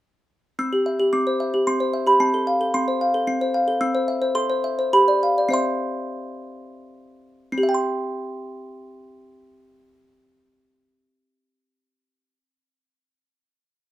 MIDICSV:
0, 0, Header, 1, 2, 480
1, 0, Start_track
1, 0, Key_signature, 0, "major"
1, 0, Tempo, 539568
1, 526, Time_signature, 3, 2, 24, 8
1, 3876, Tempo, 588235
1, 4836, Tempo, 649351
1, 5796, Tempo, 693642
1, 10694, End_track
2, 0, Start_track
2, 0, Title_t, "Music box"
2, 0, Program_c, 0, 10
2, 523, Note_on_c, 0, 60, 55
2, 524, Note_on_c, 0, 88, 88
2, 646, Note_on_c, 0, 67, 46
2, 766, Note_on_c, 0, 76, 46
2, 841, Note_off_c, 0, 67, 0
2, 885, Note_on_c, 0, 67, 45
2, 961, Note_off_c, 0, 76, 0
2, 991, Note_off_c, 0, 88, 0
2, 993, Note_off_c, 0, 60, 0
2, 1003, Note_on_c, 0, 86, 89
2, 1004, Note_on_c, 0, 60, 48
2, 1082, Note_off_c, 0, 67, 0
2, 1128, Note_on_c, 0, 72, 44
2, 1247, Note_on_c, 0, 76, 46
2, 1324, Note_off_c, 0, 72, 0
2, 1368, Note_on_c, 0, 67, 44
2, 1443, Note_off_c, 0, 76, 0
2, 1470, Note_off_c, 0, 86, 0
2, 1478, Note_off_c, 0, 60, 0
2, 1486, Note_on_c, 0, 84, 81
2, 1488, Note_on_c, 0, 60, 47
2, 1562, Note_off_c, 0, 67, 0
2, 1604, Note_on_c, 0, 72, 47
2, 1721, Note_on_c, 0, 76, 49
2, 1798, Note_off_c, 0, 72, 0
2, 1831, Note_off_c, 0, 84, 0
2, 1837, Note_on_c, 0, 67, 42
2, 1844, Note_on_c, 0, 83, 74
2, 1915, Note_off_c, 0, 76, 0
2, 1947, Note_off_c, 0, 60, 0
2, 1958, Note_on_c, 0, 60, 60
2, 1959, Note_on_c, 0, 81, 82
2, 1962, Note_off_c, 0, 67, 0
2, 1965, Note_off_c, 0, 83, 0
2, 2082, Note_on_c, 0, 69, 46
2, 2198, Note_on_c, 0, 77, 46
2, 2275, Note_off_c, 0, 69, 0
2, 2320, Note_on_c, 0, 69, 46
2, 2392, Note_off_c, 0, 77, 0
2, 2419, Note_off_c, 0, 81, 0
2, 2429, Note_off_c, 0, 60, 0
2, 2438, Note_on_c, 0, 84, 85
2, 2439, Note_on_c, 0, 60, 61
2, 2512, Note_off_c, 0, 69, 0
2, 2561, Note_on_c, 0, 72, 50
2, 2680, Note_on_c, 0, 77, 53
2, 2750, Note_off_c, 0, 72, 0
2, 2796, Note_on_c, 0, 69, 52
2, 2869, Note_off_c, 0, 77, 0
2, 2903, Note_off_c, 0, 60, 0
2, 2913, Note_on_c, 0, 60, 61
2, 2985, Note_off_c, 0, 69, 0
2, 3037, Note_on_c, 0, 72, 59
2, 3121, Note_off_c, 0, 84, 0
2, 3152, Note_on_c, 0, 77, 54
2, 3226, Note_off_c, 0, 72, 0
2, 3271, Note_on_c, 0, 69, 52
2, 3343, Note_off_c, 0, 77, 0
2, 3376, Note_off_c, 0, 60, 0
2, 3387, Note_on_c, 0, 88, 109
2, 3388, Note_on_c, 0, 60, 73
2, 3391, Note_off_c, 0, 69, 0
2, 3510, Note_on_c, 0, 72, 60
2, 3630, Note_on_c, 0, 76, 56
2, 3705, Note_off_c, 0, 72, 0
2, 3751, Note_on_c, 0, 72, 57
2, 3827, Note_off_c, 0, 76, 0
2, 3856, Note_off_c, 0, 88, 0
2, 3862, Note_off_c, 0, 60, 0
2, 3869, Note_on_c, 0, 69, 78
2, 3871, Note_on_c, 0, 84, 102
2, 3876, Note_off_c, 0, 72, 0
2, 3989, Note_on_c, 0, 72, 59
2, 4107, Note_on_c, 0, 76, 63
2, 4177, Note_off_c, 0, 72, 0
2, 4227, Note_on_c, 0, 72, 58
2, 4296, Note_off_c, 0, 76, 0
2, 4323, Note_off_c, 0, 84, 0
2, 4326, Note_off_c, 0, 69, 0
2, 4345, Note_off_c, 0, 72, 0
2, 4345, Note_on_c, 0, 67, 73
2, 4346, Note_on_c, 0, 83, 96
2, 4466, Note_on_c, 0, 74, 59
2, 4589, Note_on_c, 0, 77, 54
2, 4662, Note_off_c, 0, 74, 0
2, 4711, Note_on_c, 0, 74, 48
2, 4787, Note_off_c, 0, 77, 0
2, 4797, Note_on_c, 0, 60, 65
2, 4812, Note_on_c, 0, 72, 50
2, 4818, Note_off_c, 0, 83, 0
2, 4823, Note_off_c, 0, 67, 0
2, 4827, Note_on_c, 0, 76, 47
2, 4837, Note_off_c, 0, 74, 0
2, 4837, Note_on_c, 0, 84, 87
2, 6005, Note_off_c, 0, 84, 0
2, 6228, Note_off_c, 0, 60, 0
2, 6235, Note_off_c, 0, 72, 0
2, 6240, Note_off_c, 0, 76, 0
2, 6274, Note_on_c, 0, 60, 63
2, 6311, Note_on_c, 0, 67, 57
2, 6350, Note_on_c, 0, 76, 57
2, 6388, Note_on_c, 0, 79, 58
2, 6427, Note_on_c, 0, 84, 54
2, 9561, Note_off_c, 0, 60, 0
2, 9598, Note_off_c, 0, 67, 0
2, 9637, Note_off_c, 0, 76, 0
2, 9675, Note_off_c, 0, 79, 0
2, 9714, Note_off_c, 0, 84, 0
2, 10694, End_track
0, 0, End_of_file